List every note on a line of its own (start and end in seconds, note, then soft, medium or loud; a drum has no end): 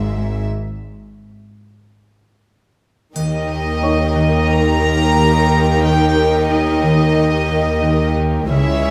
0.00 0.45 G#1 soft
0.00 0.46 G#2 soft
0.00 0.46 E5 soft
0.17 0.37 G#3 soft
3.16 8.46 D#2 soft
3.16 3.36 D#3 soft
3.16 8.45 D#3 soft
3.16 8.46 D#4 soft
3.16 8.46 G4 soft
3.16 8.46 A#4 soft
3.16 4.46 D#5 soft
3.16 triangle soft
3.50 3.70 D#3 soft
3.83 4.03 D#4 soft
3.83 5.79 C#5 soft
3.83 5.79 C#6 soft
4.16 4.36 D#3 soft
4.48 4.70 D#3 soft
4.48 5.82 A#5 medium
4.82 5.03 D#3 soft
5.16 5.36 D#3 soft
5.50 5.70 D#3 soft
5.83 6.03 D#3 soft
5.83 6.49 G5 medium
6.17 6.37 D#3 soft
6.50 6.70 D#4 soft
6.50 8.13 D#5 medium
6.83 7.03 D#3 medium
7.18 7.37 D#3 soft
7.51 7.71 D#3 soft
7.83 8.03 D#3 medium
8.17 8.37 D#3 soft
8.50 8.90 C#2 soft
8.50 8.70 C#3 medium
8.50 8.90 G#3 soft
8.50 8.90 E4 soft
8.50 8.90 G#4 soft
8.50 8.90 C#5 medium
8.50 8.90 E5 medium
8.83 8.90 C#3 soft